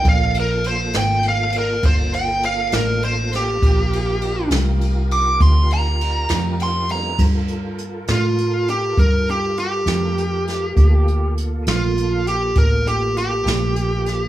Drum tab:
CC |------------|------------|x-----------|------------|
RD |xxxxxxxxxxxx|xxxxxxxxxxxx|------------|------------|
HH |------------|------------|-xxxxxxxxxxx|xxxxxxxxxxxx|
SD |---o-----o-o|---o-----o--|---o-----o-o|---o-----o-o|
BD |o-----o-----|o-----o-----|o-----o-----|o-----o-----|